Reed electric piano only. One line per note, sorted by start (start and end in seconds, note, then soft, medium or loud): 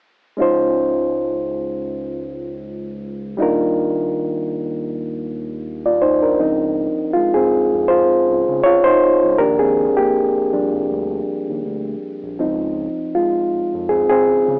0.37 3.34 G#3 medium
0.37 3.35 C#4 medium
0.37 3.35 D#4 soft
0.37 3.36 F4 medium
0.42 3.36 C5 medium
3.37 6.34 G3 medium
3.37 5.22 D4 medium
3.37 5.23 D#4 medium
3.37 5.24 F4 medium
3.42 5.24 A#4 medium
5.86 6.01 F4 soft
5.86 6.01 D5 soft
6.02 6.21 D#4 soft
6.02 6.21 C5 medium
6.23 6.58 D4 soft
6.23 6.58 A#4 soft
6.40 6.90 F3 soft
6.40 6.91 C4 soft
6.40 6.91 D#4 soft
7.13 7.34 G#3 medium
7.13 7.35 F4 medium
7.34 7.86 C4 medium
7.34 7.90 G#4 medium
7.88 8.61 F4 medium
7.88 8.66 C5 medium
8.64 8.84 F4 medium
8.64 8.83 C#5 medium
8.84 9.36 D#4 medium
8.84 9.35 C5 medium
9.39 9.90 F3 soft
9.39 9.91 D4 medium
9.39 9.90 G4 soft
9.39 9.58 A#4 medium
9.59 9.77 C4 medium
9.59 9.76 G#4 medium
9.97 11.44 A#3 medium
9.97 11.43 G4 medium
10.52 10.86 F3 soft
10.52 10.86 G3 soft
10.52 10.86 D4 soft
12.39 12.90 F3 medium
12.39 12.90 C4 soft
12.39 12.91 D#4 soft
13.15 13.86 G#3 soft
13.15 13.85 F4 medium
13.89 14.09 C4 medium
13.89 14.08 G#4 medium
14.09 14.60 C4 medium
14.09 14.60 G#4 medium